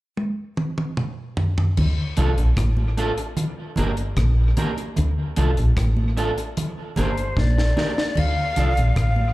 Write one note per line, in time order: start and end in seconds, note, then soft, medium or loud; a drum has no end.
0.17 high tom medium
0.57 mid tom medium
0.78 mid tom medium
0.97 mid tom medium
1.37 floor tom medium
1.58 floor tom medium
1.77 1.96 D2 loud
1.77 crash medium
1.77 low conga medium
2.17 2.36 C2 medium
2.17 2.30 A3 medium
2.17 2.30 D4 medium
2.17 2.31 F4 medium
2.17 2.31 A4 medium
2.17 closed hi-hat medium
2.17 low conga medium
2.38 2.55 A#1 medium
2.38 closed hi-hat soft
2.57 3.11 A1 medium
2.57 kick loud
2.57 cross-stick medium
2.57 closed hi-hat medium
2.57 high conga medium
2.77 high conga medium
2.97 3.10 A3 medium
2.97 3.10 D4 medium
2.97 3.11 F4 loud
2.97 3.11 A4 medium
2.97 closed hi-hat medium
3.18 muted clean electric guitar stroke soft
3.18 closed hi-hat medium
3.37 closed hi-hat medium
3.37 low conga medium
3.76 4.13 G1 medium
3.76 3.90 A#3 medium
3.76 3.90 D4 medium
3.76 3.91 G4 medium
3.76 3.91 A#4 loud
3.76 closed hi-hat medium
3.76 low conga medium
3.97 closed hi-hat soft
4.17 4.52 A#1 medium
4.17 kick loud
4.17 cross-stick loud
4.17 closed hi-hat medium
4.17 high conga medium
4.57 4.70 A#3 medium
4.57 4.70 D4 medium
4.57 4.70 G4 medium
4.57 4.71 A#4 medium
4.57 closed hi-hat medium
4.57 high conga medium
4.57 low conga medium
4.77 closed hi-hat soft
4.77 high conga soft
4.96 5.16 D2 loud
4.96 closed hi-hat medium
4.96 low conga medium
5.36 5.56 C2 medium
5.36 5.50 A3 medium
5.36 5.50 D4 medium
5.36 5.50 F4 medium
5.36 5.51 A4 medium
5.36 closed hi-hat medium
5.36 low conga medium
5.57 5.75 A#1 medium
5.57 closed hi-hat soft
5.77 6.30 A1 medium
5.77 kick medium
5.77 cross-stick loud
5.77 closed hi-hat medium
5.77 high conga soft
5.97 high conga medium
6.17 6.30 A3 medium
6.17 6.30 D4 medium
6.17 6.30 F4 medium
6.17 6.30 A4 loud
6.17 closed hi-hat medium
6.37 muted clean electric guitar stroke soft
6.37 closed hi-hat medium
6.57 closed hi-hat medium
6.57 low conga medium
6.96 7.33 G1 medium
6.96 7.10 A#3 medium
6.96 7.10 D4 medium
6.96 7.10 G4 medium
6.96 7.11 A#4 medium
6.96 7.41 C5 medium
6.96 closed hi-hat medium
6.96 low conga medium
7.17 closed hi-hat soft
7.37 7.72 A#1 medium
7.37 8.20 D5 loud
7.37 kick loud
7.37 snare medium
7.37 high conga soft
7.58 muted clean electric guitar stroke soft
7.58 snare medium
7.77 7.89 A#3 medium
7.77 7.90 D4 medium
7.77 7.90 G4 medium
7.77 7.91 A#4 medium
7.77 snare medium
7.77 high conga medium
7.77 low conga medium
7.97 snare medium
7.97 high conga soft
8.15 8.35 D2 loud
8.15 8.98 F5 loud
8.15 crash medium
8.15 low conga medium
8.56 8.75 C2 medium
8.56 8.70 D4 medium
8.56 8.70 F4 medium
8.56 8.70 A4 medium
8.56 8.71 D5 medium
8.56 cross-stick medium
8.56 closed hi-hat medium
8.56 low conga medium
8.77 8.95 A#1 medium
8.77 closed hi-hat soft
8.96 9.33 A1 medium
8.96 9.33 F5 medium
8.96 kick medium
8.96 cross-stick medium
8.96 closed hi-hat medium
9.16 high conga medium